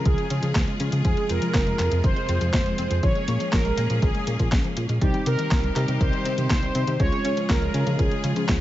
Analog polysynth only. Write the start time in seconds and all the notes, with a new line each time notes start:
0.06 G#4
1.05 G#4
1.30 A#4
2.04 C5
2.54 C5
3.03 C#5
3.53 A#4
4.02 G#4
5.02 G4
5.27 A#4
5.76 A#4
6.01 C5
6.50 C5
7.00 C#5
7.49 A#4
7.99 G#4